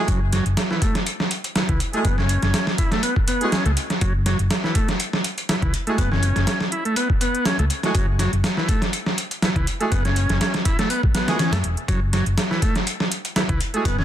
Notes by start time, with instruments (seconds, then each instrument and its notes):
0.08 fingered electric bass F#1, transistor combo organ F#3, kick, closed hi-hat
0.33 transistor combo organ F#3, snare, closed hi-hat
0.46 fingered electric bass F#1, closed hi-hat
0.57 snare, closed hi-hat
0.71 transistor combo organ E3, snare
0.82 transistor combo organ A3, kick, closed hi-hat
0.95 snare, closed hi-hat
1.06 closed hi-hat
1.20 snare
1.31 closed hi-hat
1.44 closed hi-hat
1.56 transistor combo organ E3, snare, closed hi-hat
1.69 fingered electric bass C#2, transistor combo organ E3, kick, closed hi-hat
1.80 closed hi-hat
1.93 horn section G#3 A3 E4 F#4 G#4, transistor combo organ A3, closed hi-hat
2.05 fingered electric bass F#1, transistor combo organ B3, kick, closed hi-hat
2.18 transistor combo organ C#4, snare
2.29 closed hi-hat
2.42 fingered electric bass F#1, snare, closed hi-hat
2.54 snare, closed hi-hat
2.67 snare
2.78 transistor combo organ E4, kick, closed hi-hat
2.92 transistor combo organ A3, snare, closed hi-hat
3.03 transistor combo organ B3, closed hi-hat
3.16 kick
3.28 transistor combo organ B3, closed hi-hat
3.41 horn section G#3 A3 E4 F#4 G#4, closed hi-hat
3.52 transistor combo organ C#4, snare, closed hi-hat
3.66 fingered electric bass C#2, transistor combo organ A3, closed hi-hat
3.77 closed hi-hat
3.90 snare, closed hi-hat
4.01 fingered electric bass F#1, transistor combo organ F#3, kick, closed hi-hat
4.26 transistor combo organ F#3, snare, closed hi-hat
4.39 fingered electric bass F#1, closed hi-hat
4.50 snare, closed hi-hat
4.64 transistor combo organ E3, snare
4.75 transistor combo organ A3, kick, closed hi-hat
4.88 snare, closed hi-hat
5.00 closed hi-hat
5.13 snare
5.24 closed hi-hat
5.38 closed hi-hat
5.49 transistor combo organ E3, snare, closed hi-hat
5.62 fingered electric bass C#2, transistor combo organ E3, kick, closed hi-hat
5.74 closed hi-hat
5.87 horn section G#3 A3 E4 F#4 G#4, transistor combo organ A3, closed hi-hat
5.98 fingered electric bass F#1, transistor combo organ B3, kick, closed hi-hat
6.12 transistor combo organ C#4, snare
6.23 closed hi-hat
6.36 fingered electric bass F#1, snare, closed hi-hat
6.47 snare, closed hi-hat
6.60 snare
6.72 transistor combo organ E4, closed hi-hat
6.85 transistor combo organ A3, closed hi-hat
6.96 transistor combo organ B3, closed hi-hat
7.10 kick
7.21 transistor combo organ B3, closed hi-hat
7.35 closed hi-hat
7.45 transistor combo organ C#4, snare, closed hi-hat
7.59 fingered electric bass C#2, transistor combo organ A3, closed hi-hat
7.70 closed hi-hat
7.83 horn section G#3 A3 E4 F#4 G#4, snare, closed hi-hat
7.95 fingered electric bass F#1, transistor combo organ F#3, kick, closed hi-hat
8.19 transistor combo organ F#3, snare, closed hi-hat
8.33 fingered electric bass F#1, closed hi-hat
8.44 snare, closed hi-hat
8.57 transistor combo organ E3, snare
8.69 transistor combo organ A3, kick, closed hi-hat
8.82 snare, closed hi-hat
8.93 closed hi-hat
9.06 snare
9.18 closed hi-hat
9.31 closed hi-hat
9.42 transistor combo organ E3, snare, closed hi-hat
9.56 fingered electric bass C#2, transistor combo organ E3, kick, closed hi-hat
9.67 closed hi-hat
9.80 horn section G#3 A3 E4 F#4 G#4, transistor combo organ A3, closed hi-hat
9.92 fingered electric bass F#1, transistor combo organ B3, kick, closed hi-hat
10.05 transistor combo organ C#4, snare, closed hi-hat
10.16 closed hi-hat
10.29 fingered electric bass F#1, snare, closed hi-hat
10.41 snare, closed hi-hat
10.54 snare, closed hi-hat
10.65 transistor combo organ E4, kick, closed hi-hat
10.79 transistor combo organ A3, snare, closed hi-hat
10.90 transistor combo organ B3, closed hi-hat
11.03 kick
11.15 transistor combo organ B3, snare, closed hi-hat
11.28 horn section G#3 A3 E4 F#4 G#4, snare, closed hi-hat
11.39 transistor combo organ C#4, snare, closed hi-hat
11.52 fingered electric bass F#2, transistor combo organ A3, snare, closed hi-hat
11.64 fingered electric bass E1, closed hi-hat
11.77 closed hi-hat
11.88 fingered electric bass F#1, transistor combo organ F#3, kick, closed hi-hat
12.13 transistor combo organ F#3, snare, closed hi-hat
12.26 fingered electric bass F#1, closed hi-hat
12.38 snare, closed hi-hat
12.51 transistor combo organ E3, snare
12.62 transistor combo organ A3, kick, closed hi-hat
12.75 snare, closed hi-hat
12.87 closed hi-hat
13.00 snare
13.12 closed hi-hat
13.25 closed hi-hat
13.36 transistor combo organ E3, snare, closed hi-hat
13.49 fingered electric bass C#2, transistor combo organ E3, kick, closed hi-hat
13.61 closed hi-hat
13.74 horn section G#3 A3 E4 F#4 G#4, transistor combo organ A3, closed hi-hat
13.85 fingered electric bass F#1, transistor combo organ B3, kick, closed hi-hat
13.99 transistor combo organ C#4, snare